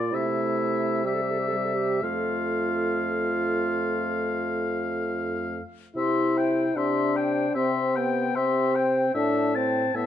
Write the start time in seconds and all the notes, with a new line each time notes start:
Already playing: A#2 F4 D5
0.11 C3 A3 E4 E5
1.04 G3 G4 E5
1.15 A4
1.22 G4
1.31 A4
1.40 G4
1.48 A4
1.53 G3
1.57 G4
1.65 A4
1.75 G4
2.01 F2 A3 F4 F5
5.96 C3 E4 G4 E5 C6
6.36 C5 G5
6.76 C3 D4 G4 E5 C6
7.16 C5 G5
7.55 C3 C4 G4 E5 C6
7.96 B3 C5 G5
8.35 C3 C4 G4 E5 C6
8.75 C5 G5
9.14 A2 D4 A4 E5 A5
9.55 C4 C5 G5 A5
9.95 A2 B3 A4 E5 A5